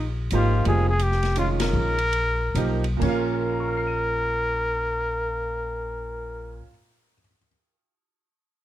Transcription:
0.00 0.28 A#1 medium
0.30 0.64 G#1 medium
0.30 0.85 F3 medium
0.30 0.85 A#3 medium
0.30 0.85 D#4 medium
0.30 0.65 F4 medium
0.30 hi-hat pedal medium
0.30 ride medium
0.35 0.85 G4 medium
0.65 1.70 F1 medium
0.65 0.87 G3 medium
0.65 0.87 C4 medium
0.65 0.87 F4 medium
0.65 0.88 G#4 medium
0.65 ride medium
0.89 1.04 G#4 loud
0.99 1.37 G4 medium
0.99 hi-hat pedal soft
0.99 ride medium
1.12 snare soft
1.23 snare soft
1.23 ride soft
1.36 1.94 D#3 soft
1.36 1.94 G#3 soft
1.36 1.94 C#4 soft
1.36 1.94 F4 medium
1.36 1.49 F4 medium
1.36 hi-hat pedal soft
1.36 ride medium
1.60 2.82 A#4 loud
1.60 snare medium
1.60 ride medium
1.73 2.51 A#1 medium
1.98 ride soft
2.13 ride medium
2.55 2.98 B1 medium
2.55 2.82 F3 medium
2.55 2.82 A#3 medium
2.55 2.83 D#4 medium
2.55 2.83 G4 medium
2.55 hi-hat pedal soft
2.55 ride medium
2.84 ride soft
2.97 6.60 A#2 medium
2.97 6.63 A#3 medium
3.01 6.60 A#1 medium
3.01 6.66 C#4 medium
3.01 6.64 A#4 medium
3.01 kick medium
3.01 crash medium
3.05 6.68 F4 medium
3.05 6.72 F5 medium
3.52 7.11 A#5 soft
3.60 7.19 C#6 soft
3.68 7.27 F6 soft
3.77 7.36 C7 soft
3.87 7.46 D#7 soft

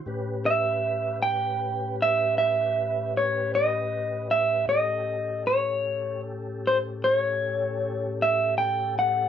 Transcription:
0.06 4.66 A2 medium
0.06 4.66 C#4 medium
0.06 4.66 G4 medium
0.06 4.66 B4 medium
0.46 1.22 E5 medium
1.22 1.95 G5 medium
2.02 2.37 E5 medium
2.38 3.17 E5 medium
3.17 3.55 C#5 medium
3.55 4.31 D#5 medium
4.31 4.68 E5 medium
4.67 9.29 A2 medium
4.67 9.29 C#4 medium
4.67 9.29 G4 medium
4.67 9.29 A4 medium
4.67 5.42 D#5 medium
5.47 6.20 C#5 medium
6.67 6.77 C5 medium
7.04 7.15 C5 medium
7.15 8.22 C#5 medium
8.22 8.57 E5 medium
8.58 8.97 G5 medium
8.99 9.29 F#5 medium

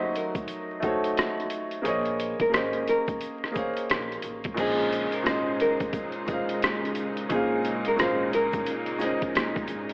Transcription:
0.00 0.10 F#1 medium
0.00 0.62 F#3 medium
0.00 0.80 A3 medium
0.00 0.82 D#4 medium
0.00 0.84 F#4 medium
0.00 0.16 C5 medium
0.00 0.85 C5 medium
0.00 0.87 C#5 medium
0.00 0.65 D#5 medium
0.15 0.80 A#4 medium
0.15 closed hi-hat medium
0.15 shaker soft
0.35 kick medium
0.35 closed hi-hat soft
0.35 shaker soft
0.48 closed hi-hat medium
0.48 shaker medium
0.80 1.65 A3 medium
0.80 1.66 D#4 medium
0.80 1.66 F#4 medium
0.80 kick medium
0.80 closed hi-hat medium
0.80 shaker medium
0.84 1.87 A4 medium
0.84 1.67 C5 medium
0.84 1.68 C#5 medium
1.04 closed hi-hat soft
1.04 shaker soft
1.17 cross-stick loud
1.17 closed hi-hat medium
1.17 shaker medium
1.40 closed hi-hat soft
1.50 closed hi-hat medium
1.50 shaker soft
1.71 closed hi-hat soft
1.82 2.32 A#1 loud
1.82 2.40 A#3 medium
1.82 2.41 G#4 medium
1.82 2.42 C5 medium
1.82 closed hi-hat medium
1.82 shaker medium
1.87 2.38 G#4 loud
1.87 2.43 C#5 medium
1.87 2.44 D#5 medium
2.05 closed hi-hat soft
2.19 closed hi-hat medium
2.19 shaker soft
2.40 2.53 A#4 medium
2.40 kick medium
2.40 closed hi-hat soft
2.49 3.35 A#3 medium
2.49 3.35 G#4 medium
2.49 3.36 C5 medium
2.54 2.83 G#1 medium
2.54 3.37 C#4 medium
2.54 2.85 C5 medium
2.54 3.38 D#5 medium
2.54 cross-stick loud
2.54 closed hi-hat medium
2.54 shaker medium
2.73 closed hi-hat soft
2.88 3.57 A#4 medium
2.88 closed hi-hat medium
2.88 shaker soft
3.08 kick medium
3.08 closed hi-hat soft
3.08 shaker soft
3.21 closed hi-hat medium
3.21 shaker medium
3.44 cross-stick soft
3.51 4.37 A#3 medium
3.51 4.38 G#4 medium
3.51 4.38 C5 medium
3.51 shaker medium
3.56 3.87 G#4 medium
3.56 4.39 C#5 medium
3.56 4.40 F5 medium
3.56 kick medium
3.56 closed hi-hat medium
3.77 closed hi-hat soft
3.77 shaker soft
3.90 4.19 A#1 medium
3.90 cross-stick loud
3.90 closed hi-hat medium
3.90 shaker medium
4.12 closed hi-hat soft
4.22 4.53 A1 medium
4.22 closed hi-hat medium
4.22 shaker soft
4.44 kick medium
4.44 closed hi-hat soft
4.54 5.13 A#2 medium
4.54 9.93 C#3 medium
4.54 5.14 G#3 medium
4.54 9.93 G#3 medium
4.54 5.14 C#4 medium
4.54 9.93 D#4 medium
4.54 7.27 C5 medium
4.54 kick loud
4.54 closed hi-hat medium
4.54 crash medium
4.54 shaker medium
4.58 5.05 A#1 loud
4.58 5.14 G#4 loud
4.58 5.15 C5 medium
4.58 5.16 D#5 medium
4.92 closed hi-hat medium
4.92 shaker soft
5.12 5.25 A#4 medium
5.12 closed hi-hat soft
5.23 5.55 G#1 medium
5.23 6.07 A#2 medium
5.23 6.08 G#3 medium
5.23 6.09 C#4 medium
5.23 cross-stick loud
5.23 closed hi-hat medium
5.23 shaker medium
5.28 6.10 C5 medium
5.28 5.58 C5 medium
5.28 6.11 D#5 medium
5.60 6.30 A#4 medium
5.60 closed hi-hat medium
5.60 shaker soft
5.80 kick medium
5.80 closed hi-hat soft
5.80 shaker soft
5.93 kick medium
5.93 closed hi-hat medium
5.93 shaker medium
6.12 closed hi-hat soft
6.26 7.11 A#2 medium
6.26 7.11 G#3 medium
6.26 7.12 C#4 medium
6.26 7.27 G#4 medium
6.26 kick medium
6.26 closed hi-hat medium
6.26 shaker soft
6.31 7.13 C5 medium
6.31 7.14 F5 medium
6.49 closed hi-hat soft
6.62 cross-stick loud
6.62 closed hi-hat medium
6.62 shaker medium
6.85 closed hi-hat soft
6.95 closed hi-hat medium
6.95 shaker soft
7.17 closed hi-hat soft
7.29 7.78 A#1 loud
7.29 7.87 A#2 medium
7.29 7.87 G#3 medium
7.29 9.93 A#3 medium
7.29 7.88 C#4 medium
7.29 7.83 G#4 loud
7.29 kick loud
7.29 closed hi-hat medium
7.29 shaker medium
7.33 7.89 C5 medium
7.33 7.90 F5 medium
7.64 closed hi-hat medium
7.64 shaker soft
7.85 7.99 A#4 medium
7.85 closed hi-hat soft
7.96 8.29 G#1 medium
7.96 8.81 A#2 medium
7.96 8.81 G#3 medium
7.96 8.82 C#4 medium
7.96 cross-stick loud
7.96 closed hi-hat medium
7.96 shaker medium
8.01 8.83 C5 medium
8.01 8.31 C5 medium
8.01 8.84 F5 medium
8.33 9.03 A#4 medium
8.33 closed hi-hat medium
8.33 shaker soft
8.52 kick medium
8.52 closed hi-hat soft
8.52 shaker soft
8.66 closed hi-hat medium
8.66 shaker medium
8.86 closed hi-hat soft
8.98 9.83 A#2 medium
8.98 9.84 G#3 medium
8.98 9.85 C#4 medium
8.98 closed hi-hat medium
8.98 shaker medium
9.03 9.33 G#4 medium
9.03 9.85 C5 medium
9.03 9.86 D#5 medium
9.22 kick medium
9.22 closed hi-hat soft
9.35 9.65 A#1 medium
9.35 cross-stick loud
9.35 closed hi-hat medium
9.35 shaker medium
9.56 kick medium
9.56 closed hi-hat soft
9.68 9.93 G#1 medium
9.68 closed hi-hat medium
9.68 shaker medium
9.89 closed hi-hat soft

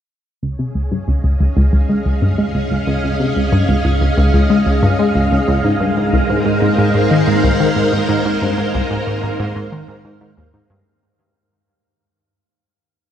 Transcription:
0.43 0.55 C#2 medium
0.43 5.65 C#4 medium
0.43 10.88 F5 medium
0.48 7.27 G#4 medium
0.59 0.71 C3 medium
0.75 0.91 C#2 medium
0.91 0.99 G2 medium
1.02 7.73 D#5 medium
1.08 1.15 C#2 medium
1.24 1.39 C#2 medium
1.33 7.73 F5 medium
1.40 1.48 C#2 medium
1.57 1.69 C#2 medium
1.73 1.85 C#2 medium
1.89 2.01 G#3 medium
2.06 2.21 C#2 medium
2.22 2.29 G2 medium
2.38 2.45 G#3 medium
2.55 2.70 C#2 medium
2.71 2.78 C#2 medium
2.87 2.99 C#2 loud
3.04 3.15 C#2 medium
3.20 3.32 C3 medium
3.36 3.52 C#2 medium
3.52 3.60 G2 loud
3.69 3.76 C#2 medium
3.85 4.00 C#2 medium
4.01 4.08 C#2 medium
4.17 4.29 C#2 medium
4.34 4.46 C#2 medium
4.50 4.62 G#3 medium
4.66 4.82 C#2 medium
4.83 4.90 G2 loud
4.99 5.06 G#3 medium
5.15 5.31 C#2 medium
5.32 5.39 C#2 medium
5.48 5.60 C#2 loud
5.64 5.76 G#2 medium
5.64 10.86 G#3 medium
5.79 5.92 G2 medium
5.79 10.86 A#4 medium
5.86 10.86 D#4 medium
5.97 6.12 G#2 medium
6.13 6.20 C2 loud
6.19 10.86 C5 medium
6.29 6.37 G#2 medium
6.46 6.61 G#2 medium
6.62 6.69 G#2 medium
6.78 6.90 G#2 medium
6.95 7.07 G#2 medium
7.11 7.23 D#3 medium
7.27 7.43 G#2 medium
7.44 7.51 C2 loud
7.60 7.67 D#3 medium
7.76 7.92 G#2 medium
7.93 8.00 G#2 medium
8.09 8.21 G#2 loud
8.25 8.37 G#2 medium
8.42 8.54 G2 medium
8.58 8.74 G#2 medium
8.74 8.81 C2 medium
8.91 8.98 G#2 medium
9.07 9.22 G#2 medium
9.23 9.30 G#2 medium
9.40 9.51 G#2 loud
9.56 9.68 G#2 medium
9.72 9.84 D#3 medium
9.88 10.00 G#2 medium
10.05 10.12 G#2 medium
10.21 10.33 G#2 medium
10.38 10.49 D#2 medium
10.54 10.61 G#2 medium
10.70 10.82 G2 loud

